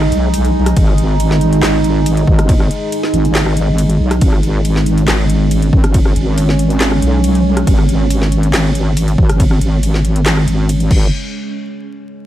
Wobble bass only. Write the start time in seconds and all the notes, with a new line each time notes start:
0.12 B1
0.77 G#1
1.63 G#1
2.28 G#1
3.14 G#1
4.00 B1
4.22 G#1
5.08 G#1
5.73 G#1
6.16 G#1
7.02 B1
7.67 G#1
8.53 G#1
9.18 G#1
9.61 G#1
10.47 G#1
10.91 G#1